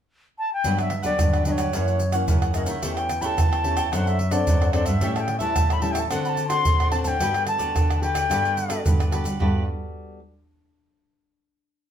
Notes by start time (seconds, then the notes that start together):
0.38 A5
0.53 G5
0.64 G2 F#3 B3 D4 G4 B4 F#5, pandeiro, shaker, surdo
0.77 G4 B4 E5 F#5, pandeiro, tamborim, shaker
0.89 muted cavaquinho stroke, pandeiro, tamborim
1.02 D3 F#3 B3 D4 G4 B4 D5 F#5, pandeiro, shaker, surdo
1.19 G2 D3, pandeiro, tamborim, shaker, surdo
1.33 G4 B4 F#5, pandeiro, tamborim, shaker
1.44 F#3 B3 D4 G4 B4 D#5 F#5, pandeiro, shaker
1.52 C#5
1.58 G4 B4 F#5, pandeiro, tamborim, shaker, surdo
1.73 F#2 E3 A#3 C#4 E4 A#4 C#5 F#5, pandeiro, tamborim, shaker, surdo
1.88 A#4 C#5 F#5, pandeiro, shaker
2.00 muted cavaquinho stroke, pandeiro, shaker
2.12 E3 A#3 C#4 A#4 C#5 F#5, pandeiro, tamborim, shaker
2.28 F#2 C#3 E4 A#4 C#5 F#5, pandeiro, shaker, surdo
2.42 A#4 C#5 F#5, pandeiro, tamborim, shaker, surdo
2.54 E3 A#3 C#4 E4 A#4 C#5 D#5 F#5, pandeiro, tamborim, shaker
2.66 D#3 E5, pandeiro, shaker, surdo
2.82 E2 E3 A3 C#4 E4 G4 A4 C#5 G5, pandeiro, shaker, surdo
2.96 A4 C#5 G5, pandeiro, tamborim, shaker
3.09 muted cavaquinho stroke, pandeiro, tamborim, shaker
3.21 E3 A3 C#4 G4 A4 C#5 G5 B5, pandeiro, shaker, surdo
3.26 A5
3.37 E2 E3, pandeiro, tamborim, shaker, surdo
3.52 A4 C#5 G5, pandeiro, tamborim, shaker
3.64 A3 C#4 E4 G4 A4 C#5 G5, pandeiro
3.76 A4 C#5 G5, pandeiro, tamborim, shaker, surdo
3.92 F#2 F#3 C4 D4 A4 C5 F#5, pandeiro, tamborim, shaker, surdo
4.06 A4 C5 E5 F#5, pandeiro, shaker
4.18 muted cavaquinho stroke, pandeiro
4.31 C4 D4 A4 C5 D5 F#5, pandeiro, tamborim, shaker
4.47 F#2 F#3 D4 A4 C5 F#5, pandeiro, shaker, surdo
4.60 A4 C5 F#5, pandeiro, tamborim, shaker, surdo
4.73 C4 D4 A4 C5 D5 F#5, pandeiro, tamborim
4.85 G2 E5, pandeiro, shaker, surdo
5.01 A2 G3 C#4 E4 G4 A4 C#5 E5, pandeiro, shaker, surdo
5.15 A4 C#5 E5 A5, pandeiro, tamborim, shaker
5.20 G5
5.27 muted cavaquinho stroke, pandeiro, tamborim
5.39 E3 G3 C#4 E4 A4 C#5 E5 A5, pandeiro, shaker, surdo
5.56 A2 E3, pandeiro, tamborim, shaker, surdo
5.69 A4 C#5 E5 B5, pandeiro, tamborim, shaker
5.81 G3 C#4 E4 G4 A4 C#5 E5 A5, pandeiro
5.92 A4 C#5 E5 G5, pandeiro, tamborim, shaker, surdo
5.99 A5
6.10 D3 C4 D4 F#4 A4 C5 D5 F#5, pandeiro, tamborim, shaker, surdo
6.25 C5 D5 F#5 B5, pandeiro, shaker
6.29 A5
6.37 muted cavaquinho stroke, pandeiro, shaker
6.48 C4 F#4 A4 D5 F#5 C6, pandeiro, tamborim, shaker
6.53 C5
6.65 A2 D3 D4 C5 D5 F#5, pandeiro, shaker, surdo
6.80 C5 D5 F#5, pandeiro, tamborim, shaker, surdo
6.91 C4 D4 F#4 A4 C5 A5, pandeiro, tamborim
6.95 D5 F#5
7.04 D3 G5 A5, pandeiro, shaker, surdo
7.19 G2 G3 B3 F#4 G4 A4 B4 D5, pandeiro, shaker, surdo
7.34 G4 B4 D5, pandeiro, tamborim, shaker
7.47 A5, muted cavaquinho stroke, pandeiro, tamborim, shaker
7.58 D3 B3 F#4 G4 A4 B4 D5, pandeiro, shaker, surdo
7.75 D3, pandeiro, tamborim, shaker, surdo
7.89 G4 B4 D5, pandeiro, tamborim, shaker
8.01 B3 F#4 G4 A4 B4 D5 G5, pandeiro
8.14 G4 B4 D5, pandeiro, tamborim, shaker, surdo
8.30 G2 G3 B3 F#4 G4 A4 B4 D5, pandeiro, tamborim, shaker, surdo
8.45 G4 B4 D5, pandeiro, shaker
8.56 muted cavaquinho stroke, pandeiro, shaker
8.69 B3 F#4 G4 A4 B4 D5, pandeiro, tamborim, shaker
8.85 G2 D3 F#4 G4 B4 D5, pandeiro, shaker, surdo
8.99 G4 B4 D5, pandeiro, tamborim, shaker, surdo
9.11 B3 F#4 G4 A4 B4 D5, pandeiro, tamborim, surdo
9.24 G3, pandeiro, shaker, surdo
9.39 G2 G3 B3 F#4 G4 A4 B4 D5, surdo